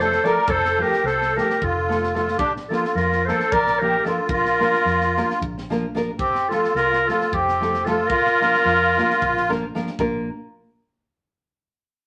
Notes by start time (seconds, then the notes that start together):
Already playing: F1
0.00 F3 A3 C4 F4 A4 C5
0.12 snare
0.23 F3 A3 C4 F4 A4 A#4 D5, snare
0.48 F1 A4 C5, kick
0.65 snare
0.78 F3 A3 C4 F4 G4 A4
0.82 A#4
0.93 snare
1.04 C2 A4 C5, snare
1.22 snare
1.36 F3 A3 C4 F4 G4 A4 A#4, snare
1.50 snare
1.62 F1 F4 A4, kick
1.89 F3 A3 C4 F4 A4, snare
2.03 snare
2.14 F3 A3 C4 F4 A4, snare
2.28 snare
2.38 A#1 D4 G4, kick
2.56 snare
2.69 F3 A#3 D4 F4 A4 A#4, snare
2.85 snare
2.95 F2 F4 A#4, snare
3.12 snare
3.25 F3 A#3 A4 C5, snare
3.29 D4 F4 A#4
3.40 snare
3.51 A#1 A#4 D5, kick
3.67 snare
3.80 F3 A#3 D4 F4 G4 A#4
4.04 F3 A#3 D4 F4 A4 A#4, snare
4.29 A#1 F4 A#4, kick
4.45 snare
4.59 F3 A#3 D4 F4 A#4, snare
4.74 snare
4.85 F2, snare
5.01 snare
5.17 F3 A#3 D4 F4 A#4, snare
5.30 snare
5.41 A#1, kick
5.58 snare
5.70 F3 A#3 D4 F4 A#4, snare
5.94 F3 A#3 D4 F4 A#4, snare
6.18 F1 C4 G4, kick
6.35 snare
6.49 F3 A3 C4 F4 A4, snare
6.64 snare
6.75 C2 F4 A#4, snare
6.93 snare
7.07 F3 A3 C4 F4 A4, snare
7.11 A4
7.21 snare
7.32 F1 C4 G4, kick
7.48 snare
7.60 F3 A3 C4 F4 A4, snare
7.74 snare
7.84 F3 A3 C4 F4 A4, snare
8.08 A#1 F4 A#4, kick
8.26 snare
8.40 F3 A#3 D4 F4 A#4, snare
8.54 snare
8.65 F2, snare
8.97 F3 A#3 D4 F4 A#4, snare
9.10 snare
9.22 A#1, kick
9.37 snare
9.49 F3 A#3 D4 F4 A#4, snare
9.75 F3 A#3 D4 F4 A#4, snare
9.87 snare
9.99 A#1 A#3 D4 F4 A#4, kick